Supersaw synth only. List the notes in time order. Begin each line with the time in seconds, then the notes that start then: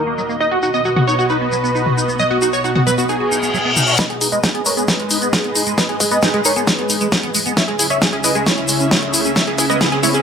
Already playing: A#4
0.40 D#5
0.51 F#4
0.63 F#4
0.74 D#5
0.85 F#4
0.96 F#4
1.07 C#5
1.19 F#4
1.30 B4
2.20 D#5
2.31 F#4
2.42 F#4
2.53 C#5
2.64 F#4
2.75 F#4
2.87 B4
2.98 F#4
3.09 G#4
3.99 B4 D#5
4.10 G#4
4.21 G#4
4.32 B4 D#5
4.43 G#4
4.55 G#4
4.66 A#4 C#5
4.77 G#4
4.88 G#4 B4
5.78 B4 D#5
5.89 G#4
6.00 G#4
6.11 B4 D#5
6.23 G#4
6.34 G#4
6.45 A#4 C#5
6.56 G#4
6.68 G#4 B4
7.57 C#5 E5
7.68 G#4
7.79 G#4
7.90 C#5 E5
8.02 G#4
8.13 G#4
8.24 B4 D#5
8.35 G#4
8.46 E4 C#5
9.36 C#5 E5
9.47 G#4
9.58 G#4
9.70 B4 D#5
9.81 G#4
9.92 G#4
10.03 E4 C#5
10.14 G#4